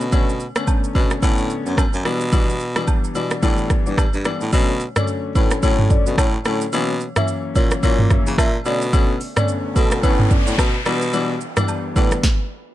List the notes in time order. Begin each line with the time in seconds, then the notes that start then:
Already playing: B2
0.01 shaker
0.12 D3 A3 B3 C#4, kick, high agogo, shaker
0.29 shaker
0.40 shaker
0.56 D3 A3 B3 C#4, cross-stick, high agogo, shaker
0.67 kick, low woodblock, shaker
0.84 shaker
0.95 B2 D3 A3 B3 C#4, kick, high agogo
1.10 cross-stick, shaker
1.22 A2 D3 A3 B3 C#4, kick, high agogo, shaker
1.38 shaker
1.50 shaker
1.66 F#2 D3 A3 B3 C#4, shaker
1.77 kick, cross-stick, high agogo, low woodblock, shaker
1.93 F#2, shaker
2.05 B2 E3 G3 B3 D4, cross-stick, high agogo
2.21 shaker
2.32 E3 G3 B3 D4, kick, high agogo, shaker
2.50 shaker
2.60 shaker
2.76 E3 G3 B3 D4, cross-stick, high agogo, shaker
2.88 kick, low woodblock, shaker
3.04 shaker
3.15 B2 E3 G3 B3 D4, high agogo, shaker
3.31 cross-stick, shaker
3.42 A2 E3 G3 B3 D4, kick, high agogo, shaker
3.58 shaker
3.70 kick, cross-stick, shaker
3.86 G2 E3 G3 B3 D4, shaker
3.98 kick, cross-stick, high agogo, low woodblock, shaker
4.13 G2, shaker
4.25 E3 G3 B3 D4, cross-stick, high agogo, shaker
4.41 A2, shaker
4.52 B2 D3 F#3 A3 C#4, kick, high agogo, shaker
4.80 shaker
4.96 D3 F#3 A3 C#4 D5, cross-stick, mid tom, high agogo, shaker
5.08 shaker
5.35 A2 D3 F#3 A3 C#4 B4, kick, high agogo, shaker
5.51 cross-stick, shaker
5.63 A2 D3 F#3 A3 C#4 C#5, kick, high agogo, shaker
5.79 mid tom
5.90 D5, kick, shaker
6.06 B2 D3 F#3 A3 C#4, shaker
6.18 A2 C#5, kick, cross-stick, high agogo, low woodblock, shaker
6.45 A2 D3 F#3 A3 C#4 C#5, cross-stick, high agogo, shaker
6.61 shaker
6.73 B2 E3 F#3 A#3 C#4, high agogo, shaker
7.00 shaker
7.16 E3 F#3 A#3 C#4 E5, cross-stick, mid tom, high agogo, shaker
7.28 shaker
7.55 A#2 E3 F#3 A#3 C#4 C#5, kick, high agogo, shaker
7.71 cross-stick, shaker
7.83 A#2 E3 F#3 A#3 C#4 C#5, kick, high agogo, shaker
7.99 mid tom
8.10 E5, kick, cross-stick, shaker
8.26 C#3 E3 F#3 A#3 C#4, shaker
8.38 A#2 E5, kick, cross-stick, high agogo, low woodblock, shaker
8.65 B2 D3 A3 B3 C#4 D5, high agogo, shaker
8.82 shaker
8.93 D3 A3 B3 C#4, kick, noise sweep, high agogo, shaker
9.21 open hi-hat, shaker
9.36 D3 A3 B3 C#4 D5, cross-stick, mid tom, high agogo, shaker
9.48 shaker
9.76 B2 D3 A3 B3 C#4 A4, kick, high agogo, shaker
9.91 cross-stick, shaker
10.03 A2 D3 A3 B3 C#4 B4, kick, high agogo, shaker
10.19 mid tom
10.31 D5, kick, shaker
10.47 A2 D3 A3 B3 C#4, shaker
10.58 B2 B4, kick, cross-stick, high agogo, low woodblock, shaker
10.85 B2 E3 G3 B3 D4 B4, cross-stick, high agogo, shaker
11.02 shaker
11.13 E3 G3 B3 D4, high agogo, shaker
11.41 shaker
11.57 E3 G3 B3 D4 D5, cross-stick, mid tom, high agogo, shaker
11.68 low woodblock, shaker
11.96 A2 E3 G3 B3 D4 B4, kick, high agogo, shaker
12.11 cross-stick, shaker
12.23 kick, snare